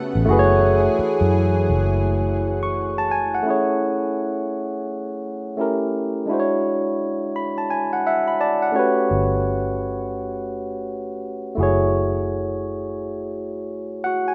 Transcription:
Already playing: analog synth pad C#3 A3 B3 F#5, tine electric piano A3 C#4 F#4 G4 B4
0.15 fingered electric bass A1
0.25 fingered electric bass F#1, analog synth pad E3 G#4, tine electric piano A3 E4 F#4
0.31 tine electric piano G#4 B4
0.39 tine electric piano C#5
0.99 muted fingered electric bass stroke
1.21 fingered electric bass F#2
1.69 fingered electric bass F#1
2.63 tine electric piano C#6
2.98 tine electric piano A5
3.11 tine electric piano G#5
3.35 tine electric piano F#5
3.43 tine electric piano A3 C#4 E4
3.49 tine electric piano G#4 C#5
5.57 tine electric piano A3 C#4 E4 G4
5.61 tine electric piano A#4
6.26 tine electric piano G#3 D4 E4
6.31 tine electric piano F#4 C5
6.40 tine electric piano C#5
7.36 tine electric piano B5
7.58 tine electric piano A5
7.70 tine electric piano G#5
7.93 tine electric piano F#5
8.07 tine electric piano E5 F#5
8.28 tine electric piano B5
8.41 tine electric piano D5 A5
8.62 tine electric piano F#5
8.72 tine electric piano A3 C#4 F#4 C#5
8.77 tine electric piano G4 B4
9.11 fingered electric bass G1
11.55 fingered electric bass F#1, tine electric piano A3 E4 F#4
11.61 tine electric piano G#4 C#5
14.04 tine electric piano F#4 F#5
14.28 tine electric piano G#5

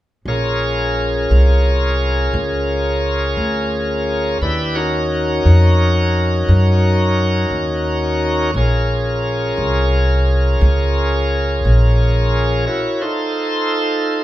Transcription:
0.26 upright bass A#1, tonewheel organ C#4 F4 G#4 A#4
1.31 upright bass C2
2.34 upright bass C#2
3.37 upright bass D2
4.41 upright bass D#2, tonewheel organ D4 E4 G4 B4
4.75 tonewheel organ C#4 D#4 F#4 A#4
5.45 upright bass F2
6.49 upright bass F#2
7.51 upright bass D#2
8.54 upright bass A#1, tonewheel organ C#4 F4 G#4 A#4
9.57 upright bass C2
10.61 upright bass C#2
11.65 upright bass A#1
12.67 tonewheel organ E4 F#4 A#4 C#5
13.01 tonewheel organ D#4 F4 A4 C5

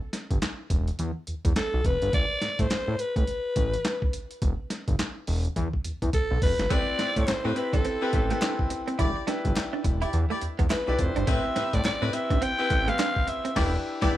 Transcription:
0.13 snare, closed hi-hat
0.31 analog synth bass G1, kick, closed hi-hat
0.42 snare, clap, closed hi-hat
0.70 analog synth bass E1, kick, closed hi-hat
0.88 closed hi-hat
0.99 analog synth bass E2, closed hi-hat
1.27 analog synth bass E2, closed hi-hat
1.45 analog synth bass E2, kick, closed hi-hat
1.56 alto saxophone A4, snare, clap, closed hi-hat
1.74 analog synth bass B1
1.84 analog synth bass F1, alto saxophone B4, kick, closed hi-hat
2.02 analog synth bass G1, closed hi-hat
2.13 analog synth bass A1, alto saxophone D5, kick, closed hi-hat
2.42 analog synth bass A2, snare, closed hi-hat
2.59 analog synth bass A2, alto saxophone C5, kick, closed hi-hat
2.70 analog synth bass A2, snare, clap, closed hi-hat
2.88 analog synth bass A2
2.99 alto saxophone B4, closed hi-hat
3.16 analog synth bass A1, alto saxophone B4, kick, closed hi-hat
3.27 closed hi-hat
3.56 analog synth bass A1, kick, closed hi-hat
3.74 closed hi-hat
3.85 snare, clap, closed hi-hat
4.02 kick
4.13 closed hi-hat
4.31 closed hi-hat
4.42 analog synth bass E1, kick, closed hi-hat
4.70 snare, closed hi-hat
4.88 analog synth bass G1, kick, closed hi-hat
4.99 snare, clap, closed hi-hat
5.27 analog synth bass E1, open hi-hat
5.45 closed hi-hat
5.56 analog synth bass E2, kick, closed hi-hat
5.73 kick
5.84 analog synth bass E2, closed hi-hat
6.02 analog synth bass E2, kick, closed hi-hat
6.13 alto saxophone A4, kick, closed hi-hat
6.31 analog synth bass B1
6.42 analog synth bass F1, alto saxophone B4, kick, open hi-hat
6.59 analog synth bass G1, snare, closed hi-hat
6.70 analog synth bass A1, clean electric guitar A3, horn section C4 G4 B4, grand piano C4 E4 G4 B4, alto saxophone D5, kick, closed hi-hat
6.88 muted clean electric guitar stroke
6.99 analog synth bass A2, horn section C4 G4 B4, clean electric guitar C4, snare, closed hi-hat
7.16 analog synth bass A2, alto saxophone C5, kick, closed hi-hat
7.28 analog synth bass A2, snare, clap, closed hi-hat
7.45 analog synth bass A2, horn section C4 G4 B4, clean electric guitar C4
7.56 grand piano C4 E4 G4 B4, alto saxophone B4, muted clean electric guitar stroke, closed hi-hat
7.73 analog synth bass A1, clean electric guitar D4, alto saxophone A4, kick, closed hi-hat
7.85 clean electric guitar C4, closed hi-hat
8.02 horn section C4 G4 B4, grand piano C4 E4 G4 B4
8.13 analog synth bass A1, muted clean electric guitar stroke, kick, closed hi-hat
8.30 clean electric guitar A3, grand piano C4 E4 G4 B4, closed hi-hat
8.42 clean electric guitar D4, snare, clap, closed hi-hat
8.59 kick
8.70 muted clean electric guitar stroke, closed hi-hat
8.88 clean electric guitar C4, closed hi-hat
8.99 analog synth bass E1, horn section E4 G4 D5, clean electric guitar E4, kick, closed hi-hat
9.16 muted clean electric guitar stroke
9.27 clean electric guitar D4, grand piano D4 E4 G4 B4, snare, closed hi-hat
9.45 analog synth bass G1, kick, closed hi-hat
9.56 snare, clap, closed hi-hat
9.73 clean electric guitar D4
9.84 analog synth bass E1, muted clean electric guitar stroke, kick, closed hi-hat
10.02 horn section E4 G4 D5, clean electric guitar E4, closed hi-hat
10.13 analog synth bass E2, closed hi-hat
10.30 clean electric guitar A3, horn section E4 G4 D5
10.41 analog synth bass E2, muted clean electric guitar stroke, closed hi-hat
10.59 analog synth bass E2, clean electric guitar B3, kick, closed hi-hat
10.70 clean electric guitar E4, alto saxophone B4, snare, clap, closed hi-hat
10.87 analog synth bass B1, grand piano D4 E4 G4 B4, horn section E4 G4 D5, muted clean electric guitar stroke
10.99 analog synth bass F1, alto saxophone C5, kick, closed hi-hat
11.16 analog synth bass G1, clean electric guitar D4, closed hi-hat
11.27 analog synth bass A1, clean electric guitar A3, grand piano C4 E4 G4 B4, horn section C4 G4 B4, alto saxophone E5, kick, closed hi-hat
11.45 muted clean electric guitar stroke
11.56 analog synth bass A2, horn section C4 G4 B4, clean electric guitar C4, snare, closed hi-hat
11.73 analog synth bass A2, alto saxophone D5, kick, closed hi-hat
11.85 analog synth bass A2, alto saxophone D5, snare, clap, closed hi-hat
12.01 analog synth bass A2, horn section C4 G4 B4, clean electric guitar C4
12.13 grand piano C4 E4 G4 B4, alto saxophone E5, muted clean electric guitar stroke, closed hi-hat
12.30 analog synth bass A1, clean electric guitar D4, kick, closed hi-hat
12.42 clean electric guitar C4, alto saxophone G5, closed hi-hat
12.59 horn section C4 G4 B4, grand piano C4 E4 G4 B4
12.70 analog synth bass A1, muted clean electric guitar stroke, kick, closed hi-hat
12.87 grand piano E3 C4 G4 B4, clean electric guitar A3, alto saxophone F5, closed hi-hat
12.99 clean electric guitar D4, snare, clap, closed hi-hat
13.16 kick
13.27 alto saxophone E5, muted clean electric guitar stroke, closed hi-hat
13.45 clean electric guitar C4, closed hi-hat
13.56 analog synth bass E1, grand piano D4 E4 G4 B4, horn section E4 G4 D5, kick, snare, crash
14.02 analog synth bass E1, grand piano D4 E4 G4 B4, horn section E4 G4 D5, kick, snare

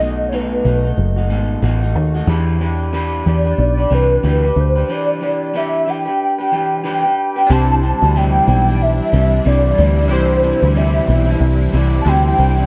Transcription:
Already playing: picked electric bass B1, soft synth lead D#5
0.00 clean electric guitar B2 A3 D#4 F#4
0.29 clean electric guitar B2, soft synth lead C#5
0.33 clean electric guitar A3 D#4 F#4, soft synth lead B4
0.64 picked electric bass B1, clean electric guitar B2 A3 D#4 F#4
0.83 clean electric guitar A3 D#4 F#4
0.97 picked electric bass F#1
1.16 clean electric guitar A3 D#4 F#4
1.29 picked electric bass G#1, clean electric guitar B2 A3 D#4 F#4
1.62 picked electric bass A1, clean electric guitar B2 A3 D#4 F#4
1.82 clean electric guitar A3 D#4 F#4
1.95 picked electric bass D#2
2.14 clean electric guitar A3 D#4 F#4
2.27 picked electric bass E2, clean electric guitar E3 D4 G4 B4
2.59 clean electric guitar E3 D4 G4 B4
2.93 clean electric guitar E3 D4 G4 B4
3.25 picked electric bass E2, clean electric guitar E3 D4 G4 B4, soft synth lead D5
3.44 clean electric guitar D4 G4 B4
3.58 picked electric bass B1, soft synth lead D5
3.77 clean electric guitar D4 G4 B4
3.90 picked electric bass C2, clean electric guitar E3 D4 G4 B4, soft synth lead B4
4.23 picked electric bass D2, clean electric guitar E3 D4 G4 B4
4.43 clean electric guitar D4 G4 B4
4.56 picked electric bass D2, soft synth lead C5
4.76 clean electric guitar D4 G4 B4
4.89 clean electric guitar E3 D4 G4 B4, soft synth lead D5
5.21 clean electric guitar E3 D4 G4 B4
5.54 clean electric guitar E3 D4 G4 B4, soft synth lead E5
5.86 clean electric guitar E3 D4 G4 B4, soft synth lead G5
6.06 clean electric guitar D4 G4 B4
6.39 clean electric guitar D4 G4 B4
6.51 clean electric guitar E3 D4 G4 B4
6.84 clean electric guitar E3 D4 G4 B4, soft synth lead G5
7.04 clean electric guitar D4 G4 B4
7.36 clean electric guitar D4 G4 B4
7.47 picked electric bass C2, clean electric guitar C3 G3 D4, synth keys D4 E4 G4
7.51 string machine E3 G3 C4 D4, clean electric guitar E4, synth keys C5, soft synth lead A5
7.82 clean electric guitar C3 G3 D4 E4, soft synth lead A5
8.02 picked electric bass D2, clean electric guitar G3 D4 E4
8.15 clean electric guitar C3 G3 D4 E4, soft synth lead G5
8.48 picked electric bass B1, clean electric guitar C3 G3 D4 E4
8.67 clean electric guitar G3 D4 E4
8.82 soft synth lead E5
9.12 picked electric bass C2, clean electric guitar C3 G3 D4 E4
9.45 picked electric bass C2, clean electric guitar C3 G3 D4 E4, soft synth lead D5
9.78 picked electric bass D2, clean electric guitar C3 G3 D4 E4
9.97 clean electric guitar G3 D4 E4
10.08 picked electric bass C2, clean electric guitar C3 G3 D4 E4, synth keys D4 E4 G4, soft synth lead C5
10.12 string machine E4, synth keys C5
10.42 clean electric guitar C3 G3 D4 E4
10.62 picked electric bass D2, clean electric guitar G3 D4 E4
10.75 clean electric guitar C3 G3 D4 E4, soft synth lead E5
11.08 picked electric bass B1, clean electric guitar C3 G3 D4 E4
11.27 clean electric guitar G3 D4 E4
11.40 picked electric bass C2
11.72 picked electric bass C2, clean electric guitar C3 G3 D4 E4
12.01 synth keys D4, soft synth lead A5
12.06 picked electric bass D2, clean electric guitar C3 G3 D4 E4, synth keys E4 G4 C5, soft synth lead G5
12.38 picked electric bass C2, clean electric guitar C3 G3 D4 E4
12.58 clean electric guitar G3 D4 E4

